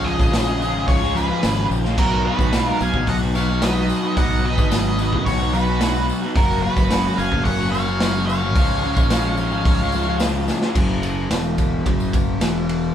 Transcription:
Already playing: C#2 C#3
0.04 F3 G#3 C#4 G#4 D#5, tambourine
0.08 F4
0.18 A#1 G#3 C#4 F4, kick, tambourine
0.32 C#3 F3 G#3 C#4 F4, snare, open hi-hat, tambourine
0.60 F3 G#3 C#4 F4, tambourine
0.74 G#1 G#3 C#4 F4
0.88 C#2 G#4 C#5, kick, open hi-hat, tambourine
1.01 G#3 C#4 F4, tambourine
1.15 F3 G#3 C#4 F4 G#4 B4, tambourine
1.29 G#3 C#4 F4
1.42 G#1 C#3 F3 G#3 C#4 F4, snare, open hi-hat, tambourine
1.55 G#3 C#4 F4
1.70 A#1, tambourine
1.83 G#3 C#4 F4, snare
1.97 B1 B2 F#3 B3 D#4 F#4 A#4, kick, crash
2.12 tambourine
2.24 F#3 B3 D#4 F#4 B4
2.38 B1 B3 D#4 F#4, kick, tambourine
2.53 B2 F#3 B3 D#4 F#4, snare, open hi-hat, tambourine
2.63 F4
2.67 A#4
2.80 B1 F#3 B3 D#4 F#4 F5 G#5, tambourine
2.94 B1 B3 D#4 F#4, kick
3.07 B1 D#5 F#5, kick, open hi-hat
3.21 B3 D#4 F#4, tambourine
3.35 F#3 B3 D#4 F#4 C#5 F5, tambourine
3.48 B3 D#4 F#4
3.61 B2 F#3 B3 D#4 F#4 B4 D#5, snare, open hi-hat, tambourine
3.76 B3 D#4 F#4
3.89 tambourine
4.03 B3 D#4 F#4
4.16 B1 B2 F#3 B3 D#4 F#4 D#5 F#5, kick, open hi-hat
4.31 tambourine
4.44 F#3 B3 D#4 F#4 B4 D#5
4.58 G#1 B3 D#4 F#4, kick, tambourine
4.71 B2 F#3 B3 D#4 F#4, snare, open hi-hat, tambourine
4.98 F#3 B3 D#4 F#4, tambourine
5.12 F#2 B3 D#4 F#4, kick
5.26 B1 F#4 C#5, kick, open hi-hat
5.40 B3 D#4 F#4
5.53 F#3 B3 D#4 F#4 B4, tambourine
5.67 B3 D#4 F#4
5.81 B2 F#3 B3 D#4 F#4, snare, open hi-hat, tambourine
5.94 B3 D#4 F#4, tambourine
6.09 tambourine
6.22 B3 D#4 F#4
6.35 F#1 F#2 C#3 F#3 A#3 C#4 F#4 A#4, kick, open hi-hat
6.39 F#4
6.51 tambourine
6.62 F#3 A#3 C#4 F#4 B4
6.67 F#4
6.76 F#1 F#3 A#3 C#4 F#4, kick, tambourine
6.90 F#2 C#3 F#3 A#3 C#4 F#4, snare, open hi-hat, tambourine
7.17 F#1 F#3 A#3 C#4 F#4 F5 G#5, tambourine
7.31 F#1 F#3 A#3 C#4 F#4, kick
7.44 F#1 C#5 F#5, kick, open hi-hat
7.59 F#3 A#3 C#4 F#4, tambourine
7.71 F#3 A#3 C#5 F5, tambourine
7.75 C#4 F#4
7.86 F#3 A#3 C#4 F#4, tambourine
8.00 F#2 C#3 F#3 A#3 C#4 F#4, snare, open hi-hat, tambourine
8.14 F#3 A#3 C#4 F#4
8.27 C#5 F5, tambourine
8.41 F#3 A#3 C#4 F#4
8.55 C#2 C#3 F3 G#3 C#4 F4, kick, open hi-hat, tambourine
8.70 tambourine
8.83 F3 G#3 C#4 F4, tambourine
8.96 A#1 G#3 C#4 F4, kick, tambourine
9.09 C#3 F3 G#3 C#4 F4, snare, open hi-hat, tambourine
9.24 tambourine
9.37 F3 G#3 C#4 F4, tambourine
9.51 G#1 G#3 C#4 F4, tambourine
9.65 C#2, kick, open hi-hat, tambourine
9.79 G#3 C#4 F4, tambourine
9.92 F3 G#3 C#4 F4, tambourine
10.07 G#3 C#4 F4
10.20 C#3 F3 G#3 C#4 F4, snare, open hi-hat, tambourine
10.33 G#3 C#4 F4
10.48 snare, tambourine
10.61 G#3 C#4 F4, snare
10.75 F#1 F#2 C#3 F#3, kick, crash
10.89 tambourine
11.03 ride, tambourine
11.17 tambourine
11.30 E1 E2 B2 E3, snare, ride, tambourine
11.58 kick, ride, tambourine
11.85 F#1 F#2 C#3 F#3, kick, ride, tambourine
12.00 tambourine
12.13 kick, ride, tambourine
12.40 E1 E2 B2 E3, snare, ride, tambourine
12.69 ride, tambourine
12.82 tambourine

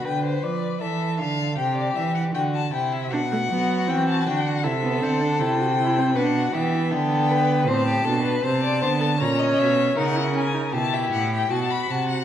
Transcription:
0.05 D3 B4 G5
0.24 C5
0.43 F3 D5
0.81 E3 A4 E5
1.20 D3 F5
1.58 C3 G4 G5
1.77 D5
1.96 E3 E5
2.14 F#5
2.34 D3 F#4 G5
2.55 A5
2.73 C3 E4 G5
2.93 E5
3.12 B2 D4 F#4 F#5
3.32 A3
3.50 F#3 B3
3.88 E3 C4 G5
4.08 A5
4.26 D3 D4 G5
4.46 F#5
4.63 C3 E4 A4 E5
4.83 B3
5.02 D3 C4 F#5
5.21 D4
5.40 C3 E4 G5
5.60 F#4
5.80 E4
5.98 C4
6.15 B2 D4 B4 F#5
6.35 F#4
6.53 E3 B3 G4 E5
6.91 D3 A4 G5
7.31 B4
7.68 A2 C4 C5 A5
7.87 G4
8.05 B2 D4 A4
8.23 B4
8.44 C3 C4 C5 A5
8.63 D5
8.82 D3 B3 C5
9.00 A4
9.19 A#2 C#4 C#5 A#5
9.39 D#5
9.59 B2 E5
9.97 C#3 D#4 A#4 F#5
10.16 E4
10.34 C#4 G#5
10.54 D#4
10.73 B2 E4 G4 A5
10.93 E5
11.12 A2 F#5
11.32 G5
11.50 B2 F#4 A5
11.70 B5
11.89 C3 A5
12.09 F#5

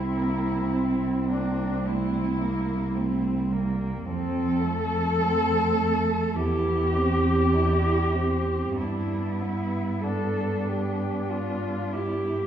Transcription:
Already playing: C2 C4 E4
0.16 A#3
0.73 C4
1.29 A#3 D4
1.85 A3 C4 E4
2.39 A#3
2.94 A3 C4
3.50 G3 A#3
4.06 F2 F3 C4 A4
4.64 A3
5.19 A3 C4
5.78 A3
6.35 E2 B3 E4 G4
6.95 C4
7.54 D4 E4
8.15 C4
8.77 G2 B3 D4 E4
9.41 B3
10.03 D4 A4
10.68 G4
11.31 F4
11.93 E4 G4

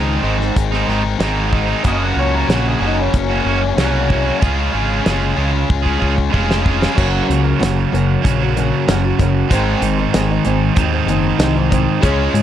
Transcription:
Already playing: C#2 G#2 D#3 G#3 C4 D#4
0.22 G#1 G#2 D#3 G#3 C4 D#4
0.38 muted distorted electric guitar stroke, snare
0.56 G#1, kick, closed hi-hat
0.71 G#3 C4 D#4, snare
0.87 G#1 D#3 G#3 C4 D#4, snare
1.04 muted distorted electric guitar stroke
1.19 G#1 G#2 D#3 G#3 C4 D#4, snare, closed hi-hat
1.51 D#3 G#3 C4 D#4, kick
1.67 G#3 C4 D#4
1.83 F#1 F#2 C#3 F#3 A#3 C#4 F#4 D#5, kick, closed hi-hat
2.03 F#5
2.16 C#2 F#3 A#3 C#4 C#5
2.20 F#4
2.34 A#4
2.48 A#1 F#2 C#3 F#3 A#3 C#4 F#4, snare, closed hi-hat
2.68 G#4
2.81 F#1 F#2 C#3 F#3 A#3 C#4 F#4
2.86 D#4
2.97 C#4, muted distorted electric guitar stroke
3.13 F#1 C#4, kick, closed hi-hat
3.30 F#3 A#3 C#4 F#4
3.45 F#1 F#3 A#3 C#4
3.50 F#4
3.63 muted distorted electric guitar stroke
3.77 C2 F#2 C#3 F#3 A#3 C#4 F#4, snare, closed hi-hat
4.09 F#3 A#3 C#4, kick
4.13 F#4
4.25 F#3 A#3 C#4 F#4
4.40 C#2 C#3 G#3 C#4 F4 G#4, kick, closed hi-hat
4.72 G#1 G#3 C#4 F4 G#4
5.03 F#1 C#3 G#3 C#4 F4 G#4, snare, closed hi-hat
5.36 C#2 C#3 G#3 C#4 F4 G#4
5.51 muted distorted electric guitar stroke
5.70 C#2, kick
5.82 C#4 F4 G#4, kick
5.98 G#3 C#4 F4 G#4
6.02 C#2, kick
6.15 muted distorted electric guitar stroke, kick
6.29 C#3 G#3 C#4 F4 G#4
6.34 F1, kick
6.51 snare
6.62 G#3 C#4 F4 G#4, kick
6.79 C#4 F4 G#4, snare
6.94 F#1 F#2 C#3 F#3 A#3 C#4 F#4 A#4, kick, crash
7.28 C#2 F#2 C#3, closed hi-hat
7.44 C#4 F#4 A#4
7.59 F#1 F#2 C#3 F#3 C#4 F#4 A#4, snare, closed hi-hat
7.76 C#4 F#4 A#4
7.92 F#1 F#2 C#3 F#3 C#4 F#4 A#4, closed hi-hat
8.21 A#1 F#2 C#3 F#3 A#3 C#4 F#4, kick
8.26 closed hi-hat
8.41 C#4 F#4 A#4
8.56 F#2 C#3 F#3 C#4 F#4 A#4, closed hi-hat
8.88 F#1 F#2 C#3 F#3 C#4 F#4 A#4, snare, closed hi-hat
9.04 C#4 F#4 A#4
9.19 F#1 F#2 C#3 F#3 C#4 F#4 A#4, kick, closed hi-hat
9.48 G#1 G#2 D#3 G#3 C4 D#4, kick, closed hi-hat
9.52 D#4 G#4
9.81 G#1 G#2 D#3, closed hi-hat
9.98 G#3 C4 D#4 G#4
10.13 G#1 G#2 D#3 G#3 C4 D#4 G#4, snare, closed hi-hat
10.29 G#3 C4 D#4 G#4
10.45 G#1 G#2 D#3 G#3 C4 D#4 G#4, closed hi-hat
10.74 D#2 G#2 D#3 G#3 C4 D#4, kick, closed hi-hat
10.92 G#3 C4 D#4 G#4
11.06 F#1 G#2 D#3 G#3 C4 D#4 G#4, closed hi-hat
11.39 C2 G#2 D#3 G#3 C4 D#4 G#4, snare, closed hi-hat
11.56 G#3 C4 D#4 G#4
11.71 G#2 D#3 G#3 C4 D#4 G#4, kick, closed hi-hat
12.01 C#2 C#3 G#3 C#4 F4 G#4 C#5, kick, closed hi-hat
12.05 F4 G#4
12.34 G#2 C#3 G#3, closed hi-hat

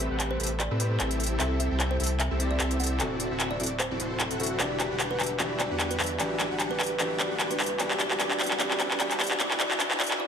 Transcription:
Already playing: A3 G4 B4 C5
0.11 A1 C4 G4 A4 B4 F#5
0.20 clap, closed hi-hat
0.31 C5
0.40 A1 C4 G4 A4 B4 E5, closed hi-hat
0.43 closed hi-hat
0.47 closed hi-hat
0.60 D5, clap, closed hi-hat
0.71 A2 C4 G4 A4 B4 E5
0.79 A3 G4 B4 C5, closed hi-hat
1.00 A1 C4 E4 G4 A4 E5, clap, closed hi-hat
1.11 closed hi-hat
1.20 closed hi-hat
1.24 closed hi-hat
1.27 closed hi-hat
1.38 C2 C3 C4 E4 G4 A4 E5, clap, closed hi-hat
1.60 E5, closed hi-hat
1.71 C2 C4 E4 G4 A4 G5
1.80 clap, closed hi-hat
1.91 C5
2.00 C2 C4 E4 G4 A4 E5, closed hi-hat
2.04 closed hi-hat
2.07 closed hi-hat
2.20 E5, clap, closed hi-hat
2.31 C2 C4 E4 G4 A4 E5
2.38 C3 C4 E4, closed hi-hat
2.42 D5
2.51 D5
2.60 C2 C4 E4 G4 A4 E5, clap, closed hi-hat
2.71 closed hi-hat
2.80 F#5, closed hi-hat
2.84 closed hi-hat
2.87 closed hi-hat
2.98 D1 D3 C4 E4 F#4 A4 D5, clap, closed hi-hat
3.02 F#4
3.20 closed hi-hat
3.31 D1 C4 E4 F#4 A4 E5
3.40 clap, closed hi-hat
3.51 D5
3.60 D1 C4 E4 F#4 A4 D5, closed hi-hat
3.63 closed hi-hat
3.66 closed hi-hat
3.80 C5, clap, closed hi-hat
3.91 D1 C4 E4 F#4 A4 D5
4.00 D1 C4 E4 F#4 A4 C5, closed hi-hat
4.20 clap, closed hi-hat
4.31 D1 C4 E4 F#4 A4 F#5, closed hi-hat
4.39 D3 C4 E4 F#4, closed hi-hat
4.43 closed hi-hat
4.46 closed hi-hat
4.58 E1 E3 D4 F#4 G4 B4 D5 E5, clap, closed hi-hat, riser
4.62 G4
4.80 D5, clap, closed hi-hat
4.91 E1 D4 F#4 G4 B4 F#5
5.00 clap, closed hi-hat
5.11 B4
5.20 E1 D4 F#4 G4 B4 E5, clap, closed hi-hat
5.23 closed hi-hat
5.26 closed hi-hat
5.38 E1 E3 D4 F#4 G4 B4 D5 E5, clap, closed hi-hat
5.60 D5, clap, closed hi-hat
5.71 E2 D4 F#4 G4 B4 F#5
5.80 clap, closed hi-hat
5.91 B4, closed hi-hat
6.00 E2 D4 F#4 G4 B4 E5, clap, closed hi-hat
6.03 closed hi-hat
6.06 closed hi-hat
6.18 A1 E3 D4 F#4 G4 B4 D5 E5, clap, closed hi-hat
6.22 G4
6.40 D5, clap, closed hi-hat
6.51 A1 D4 F#4 G4 B4 F#5
6.60 clap, closed hi-hat
6.71 B4
6.80 A1 D4 F#4 G4 B4 E5, clap, closed hi-hat
6.83 closed hi-hat
6.86 closed hi-hat
6.98 A1 E3 D4 F#4 G4 B4 D5 E5, clap, closed hi-hat
7.02 G4
7.20 D5, clap, closed hi-hat
7.31 A1 D4 F#4 G4 B4 F#5
7.40 clap, closed hi-hat
7.51 B4, closed hi-hat
7.60 C2 D4 F#4 G4 B4 E5, clap, closed hi-hat
7.63 closed hi-hat
7.66 closed hi-hat
7.78 C2 E3 D4 F#4 G4 B4 D5 E5, clap, closed hi-hat
7.91 clap
8.00 D5, clap, closed hi-hat
8.11 C2 D4 F#4 G4 B4 F#5, clap
8.18 C2 E3 D4 F#4 G4 B4 D5 E5, clap, closed hi-hat
8.31 clap
8.40 D5, clap, closed hi-hat
8.43 closed hi-hat
8.46 closed hi-hat
8.51 C2 D4 F#4 G4 B4 F#5, clap
8.58 C2 E3 D4 F#4 G4 B4 D5 E5, clap, closed hi-hat
8.71 clap
8.80 D5, clap, closed hi-hat
8.91 C2 D4 F#4 G4 B4 F#5, clap
8.98 C2 E3 D4 F#4 G4 B4 D5 E5, clap, closed hi-hat
9.02 G4
9.11 clap, closed hi-hat
9.20 D5, clap, closed hi-hat
9.24 closed hi-hat
9.27 closed hi-hat
9.31 D1 D4 F#4 G4 B4 F#5, clap
9.38 D1 E3 D4 F#4 B4 D5 E5, clap, closed hi-hat
9.51 clap
9.58 D1 E3 D4 F#4 B4 D5 E5, clap, closed hi-hat
9.71 clap
9.78 D1 E3 D4 F#4 B4 D5 E5, clap, closed hi-hat
9.91 clap
9.98 D1 E3 D4 F#4 B4 D5 E5, clap, closed hi-hat
10.04 closed hi-hat
10.07 closed hi-hat
10.11 clap
10.20 D5, swell

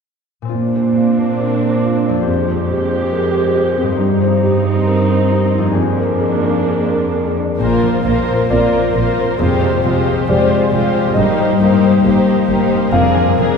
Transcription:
0.42 A#2 C4
0.48 D4 F4
0.53 A#2 C4 D4
0.76 C5
0.96 F4
1.40 A#4
1.63 C5
1.85 F4
2.06 F2 D4
2.13 C4
2.18 F4
2.23 G#3 G4
2.27 F2
2.49 C5
2.70 G4
2.90 C5
3.12 A#4
3.35 C5
3.55 G4
3.77 C4
3.83 G2
3.87 C4
3.92 D#4
3.96 G2 C4 G4
4.00 G2 D#4
4.22 C5
4.43 G4
4.64 C5
4.87 A#4
5.10 C5
5.31 G4
5.53 D#4
5.58 F2
5.63 A#3
5.67 D4
5.72 F2 A#3 G#4
5.76 F2 D4
6.00 A#4
6.20 G#4
6.43 A#4
6.67 G#4
6.90 A#4
7.13 G#4
7.37 D4
7.58 A#1 A#2 A#3 F4 A#4 C5
7.82 F3
8.04 A#1 A#2 A#3 F4 A#4 C5
8.28 C4
8.50 A#1 A#2 A#3 C4 F4 A#4 C5 D5
8.73 A#4
8.95 A#1 A#2 A#3 F4 A#4 C5
9.17 C4
9.39 F1 F2 G#3 F4 G4 C5
9.61 C3
9.84 F1 F2 G#3 F4 G4 C5
10.06 C4
10.28 F1 F2 G#3 F4 G4 C5 D5
10.50 C5
10.72 F1 F2 G#3 F4 G4 C5
10.95 C4
11.14 G1 G2 A#3 D#4 C5 D#5
11.19 G4
11.38 G3
11.60 G1 G2 A#3 D#4 G4 C5
11.83 C4
12.04 G1 G2 A#3 D#4 G4 C5
12.28 A#4
12.49 G1 G2 A#3 D#4 G4 C5
12.71 C4
12.92 F1 F2 A#3 D4 G#4 A#4 F5
13.16 F3
13.38 F1 F2 A#3 D4 G#4 A#4

